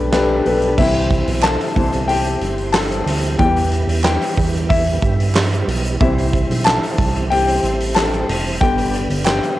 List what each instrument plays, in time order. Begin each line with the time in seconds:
Already playing: analog synth bass B1, upright piano G2 D3 D4 G4 A4 B4 D5, tonewheel organ G3 A3 B3
0.12 upright piano D4 G4 A4 B4, snare, clap, closed hi-hat
0.46 analog synth bass B1, upright piano D4 G4 A4 B4, open hi-hat
0.62 closed hi-hat
0.78 analog synth bass C2, tonewheel organ E3 G3 C4, upright piano E3 G3 C4 E4 E5, kick, crash
0.95 open hi-hat
1.10 kick, hi-hat pedal, open hi-hat
1.27 analog synth bass B1, hi-hat pedal, open hi-hat
1.43 upright piano A4 A5, snare, clap, hi-hat pedal, open hi-hat
1.45 clap
1.60 hi-hat pedal, open hi-hat
1.76 analog synth bass C2, upright piano E3 G3 C4, kick, hi-hat pedal, open hi-hat
1.92 hi-hat pedal, open hi-hat
2.08 upright piano G4 G5, hi-hat pedal, open hi-hat
2.26 hi-hat pedal
2.41 analog synth bass G1, hi-hat pedal, open hi-hat
2.58 open hi-hat
2.72 upright piano A4 A5, snare, clap, hi-hat pedal, open hi-hat
2.91 hi-hat pedal, open hi-hat
3.06 analog synth bass D2, snare, hi-hat pedal, open hi-hat
3.23 hi-hat pedal, open hi-hat
3.39 analog synth bass E2, upright piano E3 G3 B3 G4 G5, tonewheel organ B3, kick, hi-hat pedal, open hi-hat
3.56 hi-hat pedal, open hi-hat
3.72 hi-hat pedal, open hi-hat
3.87 analog synth bass E2, hi-hat pedal, open hi-hat
4.04 upright piano G5, snare, clap, hi-hat pedal, open hi-hat
4.05 upright piano G4, clap
4.21 hi-hat pedal, open hi-hat
4.38 analog synth bass E2, kick, hi-hat pedal, open hi-hat
4.54 hi-hat pedal, open hi-hat
4.69 upright piano E4 E5, kick, hi-hat pedal, open hi-hat
4.86 hi-hat pedal, open hi-hat
5.02 analog synth bass G2, kick, hi-hat pedal, open hi-hat
5.20 hi-hat pedal, open hi-hat
5.35 snare, clap, hi-hat pedal, open hi-hat
5.37 clap
5.52 hi-hat pedal, open hi-hat
5.67 analog synth bass B1, hi-hat pedal, open hi-hat
5.84 hi-hat pedal, open hi-hat
6.00 analog synth bass C2, upright piano E3 G3 C4 E4 E5, tonewheel organ G3 C4, kick, hi-hat pedal, open hi-hat
6.18 hi-hat pedal, open hi-hat
6.33 kick, hi-hat pedal, open hi-hat
6.49 analog synth bass B1, hi-hat pedal, open hi-hat
6.65 upright piano A4 A5, snare, clap, hi-hat pedal, open hi-hat
6.68 clap
6.83 hi-hat pedal, open hi-hat
6.98 analog synth bass C2, kick, hi-hat pedal, open hi-hat
7.15 hi-hat pedal, open hi-hat
7.30 upright piano G4 G5, hi-hat pedal, open hi-hat
7.48 hi-hat pedal, open hi-hat
7.63 analog synth bass A1, hi-hat pedal, open hi-hat
7.80 hi-hat pedal, open hi-hat
7.95 upright piano A4 A5, snare, clap, hi-hat pedal, open hi-hat
7.97 clap
8.13 hi-hat pedal
8.29 analog synth bass F1, snare, hi-hat pedal, open hi-hat
8.45 open hi-hat
8.61 analog synth bass G1, upright piano D3 G3 B3 G4 G5, tonewheel organ D3 B3, kick, hi-hat pedal, open hi-hat
8.78 hi-hat pedal, open hi-hat
8.94 hi-hat pedal, open hi-hat
9.10 analog synth bass G1, hi-hat pedal, open hi-hat
9.25 upright piano G4 G5, snare, clap, hi-hat pedal, open hi-hat
9.28 clap
9.43 hi-hat pedal